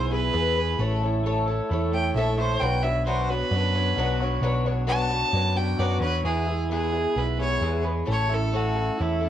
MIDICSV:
0, 0, Header, 1, 5, 480
1, 0, Start_track
1, 0, Key_signature, 3, "major"
1, 0, Tempo, 455581
1, 837, Time_signature, 4, 2, 24, 8
1, 9789, End_track
2, 0, Start_track
2, 0, Title_t, "Fiddle"
2, 0, Program_c, 0, 110
2, 0, Note_on_c, 0, 72, 93
2, 110, Note_off_c, 0, 72, 0
2, 130, Note_on_c, 0, 71, 115
2, 1054, Note_off_c, 0, 71, 0
2, 2036, Note_on_c, 0, 79, 98
2, 2263, Note_off_c, 0, 79, 0
2, 2270, Note_on_c, 0, 76, 92
2, 2504, Note_off_c, 0, 76, 0
2, 2515, Note_on_c, 0, 72, 105
2, 2738, Note_on_c, 0, 79, 100
2, 2754, Note_off_c, 0, 72, 0
2, 2981, Note_on_c, 0, 76, 99
2, 2996, Note_off_c, 0, 79, 0
2, 3210, Note_off_c, 0, 76, 0
2, 3217, Note_on_c, 0, 72, 98
2, 3471, Note_on_c, 0, 71, 113
2, 3486, Note_off_c, 0, 72, 0
2, 4867, Note_off_c, 0, 71, 0
2, 5143, Note_on_c, 0, 81, 127
2, 5865, Note_on_c, 0, 79, 107
2, 5881, Note_off_c, 0, 81, 0
2, 6099, Note_on_c, 0, 74, 94
2, 6114, Note_off_c, 0, 79, 0
2, 6322, Note_off_c, 0, 74, 0
2, 6328, Note_on_c, 0, 71, 111
2, 6572, Note_off_c, 0, 71, 0
2, 6586, Note_on_c, 0, 68, 81
2, 7035, Note_off_c, 0, 68, 0
2, 7076, Note_on_c, 0, 68, 83
2, 7560, Note_on_c, 0, 71, 96
2, 7576, Note_off_c, 0, 68, 0
2, 7796, Note_off_c, 0, 71, 0
2, 7804, Note_on_c, 0, 73, 103
2, 8246, Note_off_c, 0, 73, 0
2, 8547, Note_on_c, 0, 73, 100
2, 8789, Note_on_c, 0, 69, 96
2, 8805, Note_off_c, 0, 73, 0
2, 9020, Note_on_c, 0, 66, 92
2, 9035, Note_off_c, 0, 69, 0
2, 9493, Note_on_c, 0, 64, 79
2, 9509, Note_off_c, 0, 66, 0
2, 9789, Note_off_c, 0, 64, 0
2, 9789, End_track
3, 0, Start_track
3, 0, Title_t, "Twelve-string acoustic guitar"
3, 0, Program_c, 1, 25
3, 0, Note_on_c, 1, 59, 56
3, 0, Note_on_c, 1, 64, 61
3, 0, Note_on_c, 1, 68, 58
3, 0, Note_on_c, 1, 71, 58
3, 108, Note_off_c, 1, 71, 0
3, 115, Note_off_c, 1, 59, 0
3, 119, Note_off_c, 1, 68, 0
3, 120, Note_off_c, 1, 64, 0
3, 120, Note_on_c, 1, 71, 49
3, 132, Note_on_c, 1, 68, 47
3, 143, Note_on_c, 1, 64, 41
3, 345, Note_off_c, 1, 68, 0
3, 346, Note_off_c, 1, 64, 0
3, 347, Note_on_c, 1, 52, 75
3, 354, Note_off_c, 1, 71, 0
3, 355, Note_on_c, 1, 59, 77
3, 357, Note_on_c, 1, 68, 79
3, 359, Note_on_c, 1, 64, 86
3, 366, Note_on_c, 1, 71, 85
3, 574, Note_off_c, 1, 71, 0
3, 586, Note_off_c, 1, 68, 0
3, 587, Note_on_c, 1, 71, 50
3, 592, Note_off_c, 1, 52, 0
3, 596, Note_off_c, 1, 59, 0
3, 597, Note_off_c, 1, 64, 0
3, 598, Note_on_c, 1, 68, 47
3, 614, Note_on_c, 1, 64, 43
3, 823, Note_off_c, 1, 64, 0
3, 831, Note_off_c, 1, 71, 0
3, 834, Note_on_c, 1, 57, 79
3, 836, Note_on_c, 1, 64, 87
3, 837, Note_off_c, 1, 68, 0
3, 843, Note_on_c, 1, 69, 101
3, 853, Note_on_c, 1, 73, 91
3, 1075, Note_off_c, 1, 57, 0
3, 1075, Note_off_c, 1, 73, 0
3, 1076, Note_off_c, 1, 64, 0
3, 1079, Note_off_c, 1, 69, 0
3, 1087, Note_on_c, 1, 73, 58
3, 1101, Note_on_c, 1, 69, 56
3, 1113, Note_on_c, 1, 64, 45
3, 1317, Note_off_c, 1, 64, 0
3, 1319, Note_off_c, 1, 69, 0
3, 1321, Note_off_c, 1, 73, 0
3, 1329, Note_on_c, 1, 57, 85
3, 1330, Note_on_c, 1, 64, 86
3, 1332, Note_on_c, 1, 69, 87
3, 1337, Note_on_c, 1, 73, 100
3, 1543, Note_off_c, 1, 73, 0
3, 1556, Note_on_c, 1, 73, 58
3, 1562, Note_off_c, 1, 57, 0
3, 1562, Note_off_c, 1, 64, 0
3, 1563, Note_off_c, 1, 69, 0
3, 1574, Note_on_c, 1, 69, 53
3, 1584, Note_on_c, 1, 64, 50
3, 1795, Note_off_c, 1, 73, 0
3, 1796, Note_off_c, 1, 64, 0
3, 1804, Note_off_c, 1, 69, 0
3, 1806, Note_on_c, 1, 57, 66
3, 1809, Note_on_c, 1, 64, 63
3, 1827, Note_on_c, 1, 69, 71
3, 1827, Note_on_c, 1, 73, 71
3, 2028, Note_off_c, 1, 73, 0
3, 2040, Note_off_c, 1, 57, 0
3, 2040, Note_off_c, 1, 69, 0
3, 2041, Note_off_c, 1, 64, 0
3, 2041, Note_on_c, 1, 73, 52
3, 2053, Note_on_c, 1, 69, 46
3, 2061, Note_on_c, 1, 64, 43
3, 2277, Note_off_c, 1, 73, 0
3, 2279, Note_off_c, 1, 64, 0
3, 2283, Note_off_c, 1, 69, 0
3, 2290, Note_on_c, 1, 57, 83
3, 2292, Note_on_c, 1, 64, 85
3, 2301, Note_on_c, 1, 69, 95
3, 2302, Note_on_c, 1, 73, 87
3, 2499, Note_off_c, 1, 73, 0
3, 2509, Note_off_c, 1, 69, 0
3, 2512, Note_on_c, 1, 73, 54
3, 2521, Note_off_c, 1, 57, 0
3, 2521, Note_on_c, 1, 69, 48
3, 2523, Note_off_c, 1, 64, 0
3, 2538, Note_on_c, 1, 64, 47
3, 2752, Note_off_c, 1, 73, 0
3, 2752, Note_on_c, 1, 47, 83
3, 2757, Note_off_c, 1, 69, 0
3, 2757, Note_on_c, 1, 54, 76
3, 2757, Note_on_c, 1, 59, 90
3, 2761, Note_off_c, 1, 64, 0
3, 2765, Note_on_c, 1, 66, 82
3, 2766, Note_on_c, 1, 62, 88
3, 2769, Note_on_c, 1, 73, 90
3, 2972, Note_off_c, 1, 73, 0
3, 2984, Note_off_c, 1, 66, 0
3, 2984, Note_on_c, 1, 73, 54
3, 2990, Note_off_c, 1, 62, 0
3, 2992, Note_off_c, 1, 47, 0
3, 2994, Note_off_c, 1, 59, 0
3, 2995, Note_off_c, 1, 54, 0
3, 2997, Note_on_c, 1, 66, 51
3, 3003, Note_on_c, 1, 62, 47
3, 3011, Note_on_c, 1, 59, 43
3, 3222, Note_off_c, 1, 59, 0
3, 3226, Note_off_c, 1, 62, 0
3, 3228, Note_off_c, 1, 66, 0
3, 3228, Note_off_c, 1, 73, 0
3, 3230, Note_on_c, 1, 54, 82
3, 3231, Note_on_c, 1, 47, 84
3, 3235, Note_on_c, 1, 59, 79
3, 3238, Note_on_c, 1, 62, 90
3, 3241, Note_on_c, 1, 66, 82
3, 3245, Note_on_c, 1, 73, 89
3, 3459, Note_off_c, 1, 73, 0
3, 3470, Note_off_c, 1, 62, 0
3, 3471, Note_off_c, 1, 47, 0
3, 3471, Note_off_c, 1, 54, 0
3, 3471, Note_off_c, 1, 66, 0
3, 3472, Note_on_c, 1, 73, 56
3, 3473, Note_off_c, 1, 59, 0
3, 3483, Note_on_c, 1, 62, 45
3, 3484, Note_on_c, 1, 66, 52
3, 3493, Note_on_c, 1, 59, 43
3, 3711, Note_off_c, 1, 73, 0
3, 3717, Note_off_c, 1, 62, 0
3, 3717, Note_off_c, 1, 66, 0
3, 3718, Note_off_c, 1, 59, 0
3, 3730, Note_on_c, 1, 59, 56
3, 3739, Note_on_c, 1, 62, 63
3, 3742, Note_on_c, 1, 66, 59
3, 3744, Note_on_c, 1, 73, 67
3, 3941, Note_off_c, 1, 73, 0
3, 3952, Note_off_c, 1, 66, 0
3, 3954, Note_on_c, 1, 73, 57
3, 3960, Note_off_c, 1, 59, 0
3, 3960, Note_off_c, 1, 62, 0
3, 3965, Note_on_c, 1, 66, 50
3, 3972, Note_on_c, 1, 62, 50
3, 3973, Note_on_c, 1, 59, 45
3, 4187, Note_off_c, 1, 59, 0
3, 4187, Note_off_c, 1, 62, 0
3, 4192, Note_off_c, 1, 73, 0
3, 4192, Note_on_c, 1, 47, 92
3, 4193, Note_on_c, 1, 54, 101
3, 4195, Note_off_c, 1, 66, 0
3, 4200, Note_on_c, 1, 59, 92
3, 4200, Note_on_c, 1, 62, 95
3, 4208, Note_on_c, 1, 66, 103
3, 4210, Note_on_c, 1, 73, 108
3, 4426, Note_off_c, 1, 73, 0
3, 4430, Note_off_c, 1, 66, 0
3, 4431, Note_off_c, 1, 47, 0
3, 4432, Note_off_c, 1, 54, 0
3, 4435, Note_off_c, 1, 59, 0
3, 4435, Note_off_c, 1, 62, 0
3, 4439, Note_on_c, 1, 73, 60
3, 4443, Note_on_c, 1, 66, 58
3, 4456, Note_on_c, 1, 62, 50
3, 4462, Note_on_c, 1, 59, 52
3, 4657, Note_off_c, 1, 59, 0
3, 4663, Note_off_c, 1, 62, 0
3, 4665, Note_on_c, 1, 47, 85
3, 4665, Note_on_c, 1, 54, 82
3, 4668, Note_off_c, 1, 66, 0
3, 4669, Note_on_c, 1, 59, 91
3, 4670, Note_off_c, 1, 73, 0
3, 4675, Note_on_c, 1, 62, 97
3, 4681, Note_on_c, 1, 66, 99
3, 4683, Note_on_c, 1, 73, 106
3, 4897, Note_off_c, 1, 73, 0
3, 4903, Note_off_c, 1, 66, 0
3, 4907, Note_off_c, 1, 47, 0
3, 4907, Note_off_c, 1, 54, 0
3, 4909, Note_off_c, 1, 59, 0
3, 4909, Note_on_c, 1, 73, 59
3, 4912, Note_off_c, 1, 62, 0
3, 4916, Note_on_c, 1, 66, 61
3, 4927, Note_on_c, 1, 62, 56
3, 4931, Note_on_c, 1, 59, 51
3, 5126, Note_off_c, 1, 62, 0
3, 5126, Note_off_c, 1, 66, 0
3, 5127, Note_off_c, 1, 59, 0
3, 5130, Note_on_c, 1, 47, 84
3, 5131, Note_off_c, 1, 73, 0
3, 5131, Note_on_c, 1, 54, 89
3, 5138, Note_on_c, 1, 66, 76
3, 5139, Note_on_c, 1, 59, 83
3, 5139, Note_on_c, 1, 62, 91
3, 5143, Note_on_c, 1, 73, 88
3, 5365, Note_off_c, 1, 73, 0
3, 5372, Note_off_c, 1, 66, 0
3, 5374, Note_off_c, 1, 62, 0
3, 5377, Note_on_c, 1, 73, 52
3, 5380, Note_off_c, 1, 47, 0
3, 5380, Note_off_c, 1, 54, 0
3, 5384, Note_off_c, 1, 59, 0
3, 5385, Note_on_c, 1, 66, 51
3, 5387, Note_on_c, 1, 62, 50
3, 5399, Note_on_c, 1, 59, 43
3, 5607, Note_off_c, 1, 59, 0
3, 5614, Note_off_c, 1, 62, 0
3, 5618, Note_off_c, 1, 66, 0
3, 5620, Note_on_c, 1, 59, 59
3, 5623, Note_off_c, 1, 73, 0
3, 5626, Note_on_c, 1, 62, 64
3, 5631, Note_on_c, 1, 66, 64
3, 5640, Note_on_c, 1, 73, 69
3, 5850, Note_off_c, 1, 73, 0
3, 5861, Note_off_c, 1, 66, 0
3, 5863, Note_on_c, 1, 73, 54
3, 5865, Note_off_c, 1, 59, 0
3, 5868, Note_off_c, 1, 62, 0
3, 5873, Note_on_c, 1, 66, 56
3, 5883, Note_on_c, 1, 62, 50
3, 5893, Note_on_c, 1, 59, 43
3, 6099, Note_off_c, 1, 59, 0
3, 6106, Note_off_c, 1, 62, 0
3, 6106, Note_off_c, 1, 73, 0
3, 6108, Note_on_c, 1, 47, 78
3, 6111, Note_off_c, 1, 66, 0
3, 6112, Note_on_c, 1, 59, 85
3, 6114, Note_on_c, 1, 54, 84
3, 6119, Note_on_c, 1, 62, 90
3, 6126, Note_on_c, 1, 73, 91
3, 6130, Note_on_c, 1, 66, 85
3, 6339, Note_off_c, 1, 73, 0
3, 6348, Note_off_c, 1, 66, 0
3, 6349, Note_off_c, 1, 47, 0
3, 6351, Note_off_c, 1, 59, 0
3, 6351, Note_off_c, 1, 62, 0
3, 6352, Note_off_c, 1, 54, 0
3, 6352, Note_on_c, 1, 73, 52
3, 6360, Note_on_c, 1, 66, 52
3, 6363, Note_on_c, 1, 62, 46
3, 6373, Note_on_c, 1, 59, 41
3, 6580, Note_off_c, 1, 59, 0
3, 6588, Note_on_c, 1, 40, 82
3, 6588, Note_on_c, 1, 56, 77
3, 6589, Note_off_c, 1, 62, 0
3, 6591, Note_off_c, 1, 73, 0
3, 6593, Note_on_c, 1, 59, 73
3, 6594, Note_on_c, 1, 52, 74
3, 6595, Note_off_c, 1, 66, 0
3, 6599, Note_on_c, 1, 64, 84
3, 6605, Note_on_c, 1, 68, 81
3, 6811, Note_off_c, 1, 68, 0
3, 6823, Note_off_c, 1, 64, 0
3, 6824, Note_on_c, 1, 68, 51
3, 6825, Note_off_c, 1, 59, 0
3, 6829, Note_off_c, 1, 40, 0
3, 6829, Note_off_c, 1, 56, 0
3, 6832, Note_off_c, 1, 52, 0
3, 6835, Note_on_c, 1, 64, 43
3, 6837, Note_on_c, 1, 59, 43
3, 6846, Note_on_c, 1, 56, 42
3, 7064, Note_off_c, 1, 59, 0
3, 7066, Note_off_c, 1, 56, 0
3, 7067, Note_off_c, 1, 68, 0
3, 7070, Note_on_c, 1, 40, 74
3, 7073, Note_off_c, 1, 64, 0
3, 7073, Note_on_c, 1, 52, 74
3, 7077, Note_on_c, 1, 59, 78
3, 7079, Note_on_c, 1, 56, 72
3, 7084, Note_on_c, 1, 64, 86
3, 7088, Note_on_c, 1, 68, 78
3, 7284, Note_off_c, 1, 68, 0
3, 7288, Note_off_c, 1, 64, 0
3, 7296, Note_on_c, 1, 68, 51
3, 7298, Note_off_c, 1, 59, 0
3, 7301, Note_on_c, 1, 64, 44
3, 7308, Note_off_c, 1, 56, 0
3, 7310, Note_on_c, 1, 59, 42
3, 7311, Note_off_c, 1, 40, 0
3, 7312, Note_off_c, 1, 52, 0
3, 7321, Note_on_c, 1, 56, 37
3, 7531, Note_off_c, 1, 56, 0
3, 7544, Note_off_c, 1, 59, 0
3, 7544, Note_off_c, 1, 68, 0
3, 7544, Note_on_c, 1, 56, 56
3, 7546, Note_off_c, 1, 64, 0
3, 7556, Note_on_c, 1, 59, 52
3, 7571, Note_on_c, 1, 64, 60
3, 7577, Note_on_c, 1, 68, 62
3, 7783, Note_off_c, 1, 68, 0
3, 7787, Note_off_c, 1, 64, 0
3, 7788, Note_off_c, 1, 56, 0
3, 7794, Note_off_c, 1, 59, 0
3, 7795, Note_on_c, 1, 68, 49
3, 7800, Note_on_c, 1, 64, 47
3, 7808, Note_on_c, 1, 59, 45
3, 7817, Note_on_c, 1, 56, 40
3, 8019, Note_off_c, 1, 56, 0
3, 8020, Note_off_c, 1, 59, 0
3, 8022, Note_off_c, 1, 64, 0
3, 8027, Note_off_c, 1, 68, 0
3, 8031, Note_on_c, 1, 56, 72
3, 8033, Note_on_c, 1, 40, 74
3, 8033, Note_on_c, 1, 59, 73
3, 8034, Note_on_c, 1, 64, 80
3, 8037, Note_on_c, 1, 52, 78
3, 8040, Note_on_c, 1, 68, 90
3, 8254, Note_off_c, 1, 68, 0
3, 8263, Note_off_c, 1, 64, 0
3, 8266, Note_on_c, 1, 68, 50
3, 8273, Note_off_c, 1, 40, 0
3, 8273, Note_off_c, 1, 56, 0
3, 8273, Note_off_c, 1, 59, 0
3, 8275, Note_off_c, 1, 52, 0
3, 8275, Note_on_c, 1, 64, 46
3, 8284, Note_on_c, 1, 59, 46
3, 8287, Note_on_c, 1, 56, 38
3, 8487, Note_on_c, 1, 45, 72
3, 8490, Note_off_c, 1, 56, 0
3, 8492, Note_off_c, 1, 64, 0
3, 8494, Note_on_c, 1, 57, 80
3, 8496, Note_off_c, 1, 59, 0
3, 8500, Note_on_c, 1, 61, 78
3, 8504, Note_off_c, 1, 68, 0
3, 8505, Note_on_c, 1, 64, 84
3, 8509, Note_on_c, 1, 69, 79
3, 8716, Note_off_c, 1, 69, 0
3, 8729, Note_off_c, 1, 64, 0
3, 8729, Note_on_c, 1, 69, 51
3, 8738, Note_off_c, 1, 61, 0
3, 8742, Note_off_c, 1, 45, 0
3, 8742, Note_on_c, 1, 64, 43
3, 8745, Note_off_c, 1, 57, 0
3, 8751, Note_on_c, 1, 61, 42
3, 8982, Note_off_c, 1, 61, 0
3, 8983, Note_off_c, 1, 69, 0
3, 8986, Note_off_c, 1, 64, 0
3, 8986, Note_on_c, 1, 45, 68
3, 8992, Note_on_c, 1, 57, 78
3, 8994, Note_on_c, 1, 61, 80
3, 8999, Note_on_c, 1, 64, 77
3, 9010, Note_on_c, 1, 69, 92
3, 9214, Note_off_c, 1, 69, 0
3, 9226, Note_on_c, 1, 69, 43
3, 9229, Note_off_c, 1, 64, 0
3, 9231, Note_off_c, 1, 45, 0
3, 9235, Note_off_c, 1, 57, 0
3, 9236, Note_off_c, 1, 61, 0
3, 9242, Note_on_c, 1, 64, 42
3, 9248, Note_on_c, 1, 61, 43
3, 9462, Note_off_c, 1, 61, 0
3, 9469, Note_on_c, 1, 57, 53
3, 9472, Note_off_c, 1, 69, 0
3, 9474, Note_off_c, 1, 64, 0
3, 9474, Note_on_c, 1, 61, 50
3, 9487, Note_on_c, 1, 64, 58
3, 9489, Note_on_c, 1, 69, 62
3, 9688, Note_off_c, 1, 69, 0
3, 9699, Note_off_c, 1, 64, 0
3, 9700, Note_on_c, 1, 69, 52
3, 9709, Note_off_c, 1, 61, 0
3, 9711, Note_on_c, 1, 64, 50
3, 9714, Note_off_c, 1, 57, 0
3, 9722, Note_on_c, 1, 61, 45
3, 9789, Note_off_c, 1, 61, 0
3, 9789, Note_off_c, 1, 64, 0
3, 9789, Note_off_c, 1, 69, 0
3, 9789, End_track
4, 0, Start_track
4, 0, Title_t, "Clean electric guitar"
4, 0, Program_c, 2, 27
4, 0, Note_on_c, 2, 52, 64
4, 0, Note_on_c, 2, 68, 69
4, 114, Note_on_c, 2, 59, 68
4, 115, Note_off_c, 2, 52, 0
4, 344, Note_off_c, 2, 68, 0
4, 818, Note_off_c, 2, 59, 0
4, 2025, Note_on_c, 2, 57, 68
4, 2748, Note_off_c, 2, 57, 0
4, 8267, Note_on_c, 2, 71, 72
4, 8511, Note_off_c, 2, 71, 0
4, 9703, Note_on_c, 2, 57, 61
4, 9789, Note_off_c, 2, 57, 0
4, 9789, End_track
5, 0, Start_track
5, 0, Title_t, "Picked electric bass"
5, 0, Program_c, 3, 34
5, 0, Note_on_c, 3, 35, 100
5, 306, Note_off_c, 3, 35, 0
5, 364, Note_on_c, 3, 40, 81
5, 784, Note_off_c, 3, 40, 0
5, 832, Note_on_c, 3, 33, 101
5, 1680, Note_off_c, 3, 33, 0
5, 1802, Note_on_c, 3, 40, 92
5, 2222, Note_off_c, 3, 40, 0
5, 2263, Note_on_c, 3, 34, 89
5, 2691, Note_off_c, 3, 34, 0
5, 2756, Note_on_c, 3, 35, 96
5, 3601, Note_off_c, 3, 35, 0
5, 3700, Note_on_c, 3, 42, 97
5, 4128, Note_off_c, 3, 42, 0
5, 4185, Note_on_c, 3, 35, 87
5, 4611, Note_off_c, 3, 35, 0
5, 4651, Note_on_c, 3, 35, 108
5, 5506, Note_off_c, 3, 35, 0
5, 5618, Note_on_c, 3, 42, 97
5, 6047, Note_off_c, 3, 42, 0
5, 6102, Note_on_c, 3, 42, 86
5, 6321, Note_off_c, 3, 42, 0
5, 6332, Note_on_c, 3, 40, 84
5, 6556, Note_off_c, 3, 40, 0
5, 6577, Note_on_c, 3, 40, 98
5, 7431, Note_off_c, 3, 40, 0
5, 7545, Note_on_c, 3, 35, 90
5, 7973, Note_off_c, 3, 35, 0
5, 8022, Note_on_c, 3, 40, 84
5, 8451, Note_off_c, 3, 40, 0
5, 8515, Note_on_c, 3, 33, 93
5, 9365, Note_off_c, 3, 33, 0
5, 9488, Note_on_c, 3, 40, 91
5, 9789, Note_off_c, 3, 40, 0
5, 9789, End_track
0, 0, End_of_file